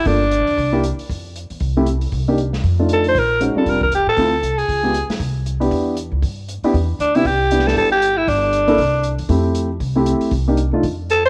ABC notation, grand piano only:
X:1
M:4/4
L:1/8
Q:"Swing" 1/4=234
K:C
V:1 name="Grand piano"
[_B,DFA] z4 [B,DEG] z2 | z4 z [A,CEG] z2 | z [_B,D_EG] z3 [A,DEF]3 | z2 [_A,_D_E^F] [G,C=D=F]2 z3 |
[A,CEF] z4 [_A,_CFG] z2 | z3 [B,DEG]3 z2 | z3 [B,DEG] z3 [C,B,DEG] | z2 [B,DEG]3 z3 |
z3 [_B,DEA] z4 | [A,CEG]3 z2 [A,CEG]3 | z [_B,D_EG] z [A,DEF] z4 |]